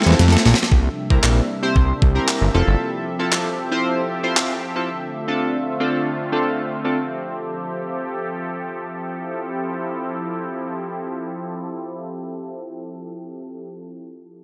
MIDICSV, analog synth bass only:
0, 0, Header, 1, 2, 480
1, 0, Start_track
1, 0, Key_signature, -1, "major"
1, 0, Tempo, 521739
1, 658, Time_signature, 4, 2, 24, 8
1, 13283, End_track
2, 0, Start_track
2, 0, Title_t, "Analog synth bass"
2, 0, Program_c, 0, 38
2, 58, Note_on_c, 0, 40, 88
2, 138, Note_off_c, 0, 40, 0
2, 179, Note_on_c, 0, 41, 93
2, 338, Note_off_c, 0, 41, 0
2, 420, Note_on_c, 0, 34, 98
2, 499, Note_off_c, 0, 34, 0
2, 659, Note_on_c, 0, 36, 116
2, 818, Note_off_c, 0, 36, 0
2, 1015, Note_on_c, 0, 36, 99
2, 1096, Note_off_c, 0, 36, 0
2, 1139, Note_on_c, 0, 34, 91
2, 1298, Note_off_c, 0, 34, 0
2, 1617, Note_on_c, 0, 36, 98
2, 1776, Note_off_c, 0, 36, 0
2, 1859, Note_on_c, 0, 36, 87
2, 2018, Note_off_c, 0, 36, 0
2, 2221, Note_on_c, 0, 31, 86
2, 2299, Note_off_c, 0, 31, 0
2, 2341, Note_on_c, 0, 29, 89
2, 2420, Note_off_c, 0, 29, 0
2, 2461, Note_on_c, 0, 31, 88
2, 2540, Note_off_c, 0, 31, 0
2, 13283, End_track
0, 0, End_of_file